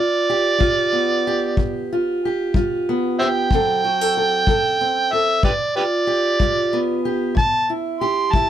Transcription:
0.00 0.21 G2 medium
0.00 0.59 F4 medium
0.00 1.84 D5 loud
0.30 1.25 G4 medium
0.58 1.17 G3 medium
0.58 1.89 F4 medium
0.58 kick medium
0.92 2.86 B3 medium
1.27 2.23 G4 medium
1.57 2.15 G2 medium
1.57 kick medium
1.93 2.55 F4 medium
2.25 3.20 G4 medium
2.54 3.12 G3 medium
2.54 3.47 F4 medium
2.54 kick medium
2.89 3.48 B3 medium
3.19 3.48 G4 medium
3.19 3.27 C5 medium
3.19 3.27 E5 medium
3.19 5.14 G5 loud
3.51 4.09 D3 medium
3.51 4.47 F#3 medium
3.51 4.80 C4 medium
3.51 3.84 A4 medium
3.51 kick medium
3.84 4.01 F#4 medium
4.01 4.16 A4 medium
4.17 4.47 A4 medium
4.47 5.05 F#3 medium
4.47 5.12 A4 medium
4.47 kick medium
4.81 5.41 C4 medium
5.12 5.40 A4 medium
5.12 5.43 E5 loud
5.43 6.02 G2 medium
5.43 5.51 G4 medium
5.43 5.52 B4 medium
5.43 5.75 D5 medium
5.43 kick medium
5.76 6.40 F4 medium
5.76 5.84 G4 medium
5.76 5.83 B4 medium
5.76 7.01 D5 loud
6.07 7.04 G4 medium
6.40 6.98 G3 medium
6.40 7.33 F4 medium
6.40 kick medium
6.73 7.33 B3 medium
7.05 7.33 G4 medium
7.35 7.94 A2 medium
7.35 7.69 A5 loud
7.35 kick medium
7.70 8.33 E4 medium
8.01 8.50 G4 medium
8.01 8.34 C6 medium
8.32 8.50 E3 medium
8.32 8.50 E4 medium
8.32 8.50 A5 loud
8.32 kick medium

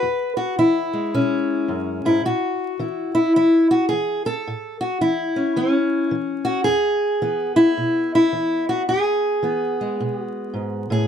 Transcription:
0.00 0.55 E2 medium
0.00 0.36 B4 loud
0.37 0.58 F#4 medium
0.59 1.10 E3 medium
0.59 1.70 E4 medium
0.93 2.25 G#3 soft
1.14 1.66 B2 medium
1.14 2.25 C#4 medium
1.68 2.04 F#2 medium
2.05 2.25 G#2 medium
2.05 2.25 E4 medium
2.25 2.77 A2 medium
2.25 3.14 F#4 medium
2.79 3.32 E3 medium
2.79 3.15 E4 soft
3.15 3.35 E4 medium
3.36 3.88 E3 medium
3.36 3.70 E4 medium
3.71 3.88 F#4 medium
3.89 4.44 E3 soft
3.89 4.25 G#4 medium
4.26 4.80 A4 medium
4.47 4.99 A2 medium
4.81 5.01 F#4 medium
5.01 5.53 E3 medium
5.01 6.13 E4 medium
5.36 5.56 C#4 soft
5.56 6.09 E3 medium
5.56 6.68 C#4 medium
6.11 6.64 E3 medium
6.45 6.64 F#4 medium
6.64 7.19 E2 medium
6.64 7.56 G#4 loud
7.22 7.74 E3 medium
7.22 9.43 B3 soft
7.56 8.13 E4 medium
7.78 8.30 B2 medium
8.15 8.69 E4 medium
8.33 8.85 E3 soft
8.69 8.82 F#4 medium
8.89 9.41 E2 medium
8.89 10.23 G#4 medium
9.43 9.95 E3 medium
9.43 11.07 B3 soft
9.81 11.07 G#3 soft
10.00 10.52 B2 medium
10.23 10.91 F#4 medium
10.53 10.90 G#2 soft
10.90 11.07 A2 medium
10.90 11.07 G#4 medium

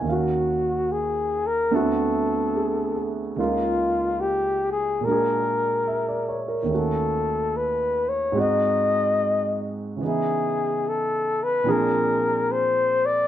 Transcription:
0.00 1.69 D#2 soft
0.00 0.14 G#5 soft
0.04 1.71 D#3 soft
0.04 1.72 C#4 soft
0.04 0.93 F#4 medium
0.09 1.74 F#4 soft
0.09 1.73 F5 soft
0.92 1.48 G#4 medium
1.47 1.76 A#4 medium
1.71 3.38 D2 medium
1.71 3.38 D3 medium
1.71 3.38 B3 soft
1.71 3.39 C4 soft
1.71 3.40 E4 soft
1.71 3.11 A4 medium
1.76 3.40 F#4 medium
2.55 3.20 G#4 soft
2.96 3.55 A4 soft
3.36 5.03 C#2 soft
3.36 5.04 C#3 soft
3.36 5.02 A#3 soft
3.36 5.05 D#4 soft
3.36 4.22 F4 medium
3.36 5.05 F4 medium
4.20 4.71 G4 medium
4.72 5.06 G#4 medium
5.01 6.69 A#2 soft
5.01 6.70 A#3 soft
5.01 6.42 A#4 medium
5.05 6.71 G#3 soft
5.05 6.72 D4 soft
5.10 6.73 F#4 soft
5.10 6.74 G#4 medium
5.87 6.26 E5 soft
6.09 6.43 D5 soft
6.29 6.55 C#5 soft
6.48 6.78 A#4 soft
6.63 8.32 D#2 soft
6.63 8.33 D#3 soft
6.68 8.35 A3 soft
6.68 8.36 C#4 soft
6.74 8.36 F#4 soft
6.74 7.58 A4 medium
7.56 8.11 B4 medium
8.09 8.42 C#5 medium
8.32 9.99 G#2 medium
8.32 10.00 G#3 soft
8.32 10.01 C4 soft
8.36 10.01 D#4 soft
8.36 10.02 F#4 medium
8.36 9.75 D#5 medium
9.96 11.64 C#3 soft
9.96 11.65 E3 soft
10.02 11.67 B3 soft
10.02 11.68 D#4 soft
10.02 10.90 G#4 medium
10.07 11.70 E4 soft
10.88 11.45 A4 medium
11.43 11.72 B4 medium
11.64 13.28 A#2 medium
11.64 13.28 F3 soft
11.64 13.28 C4 soft
11.64 13.28 D4 soft
11.68 13.28 G#4 medium
11.68 12.53 A#4 medium
12.52 13.07 C5 medium
13.06 13.28 D5 medium

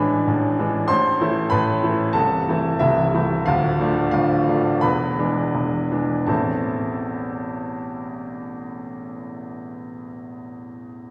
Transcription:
0.00 0.27 A1 medium
0.00 0.28 A2 medium
0.00 0.59 E3 medium
0.00 0.59 G#3 medium
0.00 0.60 D4 medium
0.00 0.92 G#4 medium
0.00 0.54 B4 medium
0.00 0.92 G#5 medium
0.00 0.57 B5 medium
0.27 0.57 A1 medium
0.27 0.57 A2 medium
0.59 0.87 E3 medium
0.59 0.87 G#3 medium
0.59 0.87 D4 medium
0.88 1.20 A1 medium
0.88 1.20 A2 medium
0.88 1.47 C5 medium
0.88 1.51 C6 medium
1.21 1.49 E3 medium
1.21 1.49 A3 medium
1.21 1.49 E4 medium
1.50 1.83 A1 medium
1.50 1.83 A2 medium
1.50 2.11 B4 medium
1.50 2.15 B5 medium
1.83 2.12 E3 medium
1.83 2.12 A3 medium
1.83 2.13 E4 medium
2.13 2.47 C1 medium
2.13 2.47 C2 medium
2.13 2.76 A4 medium
2.13 2.80 A5 medium
2.49 2.78 E3 medium
2.49 2.78 A3 medium
2.49 2.78 E4 medium
2.79 3.13 C1 medium
2.79 3.13 C2 medium
2.79 3.13 E4 medium
2.79 3.46 E5 medium
3.14 3.43 E3 soft
3.14 3.44 A3 medium
3.14 3.44 E4 medium
3.46 3.79 D1 medium
3.46 3.79 D2 medium
3.46 4.09 F4 medium
3.46 4.10 F5 medium
3.80 4.10 F3 medium
3.80 4.10 A3 medium
3.80 4.10 D4 medium
4.11 4.47 D1 medium
4.11 4.47 D2 medium
4.11 4.80 F4 medium
4.11 4.83 F5 medium
4.48 4.80 F3 soft
4.48 4.81 A3 soft
4.48 4.81 D4 medium
4.81 5.18 E1 medium
4.81 5.18 E2 medium
4.81 5.87 B4 medium
4.81 5.90 B5 medium
5.19 5.51 E3 soft
5.19 5.51 G#3 medium
5.19 5.51 D4 medium
5.55 5.90 E1 medium
5.55 5.90 E2 medium
5.92 6.25 E3 soft
5.92 6.25 G#3 soft
5.92 6.25 D4 soft
6.27 10.06 A1 medium
6.27 10.06 E2 soft
6.27 10.06 E3 soft
6.27 10.07 A3 soft
6.27 10.07 C4 soft
6.27 10.07 E4 soft
6.27 10.05 A5 soft

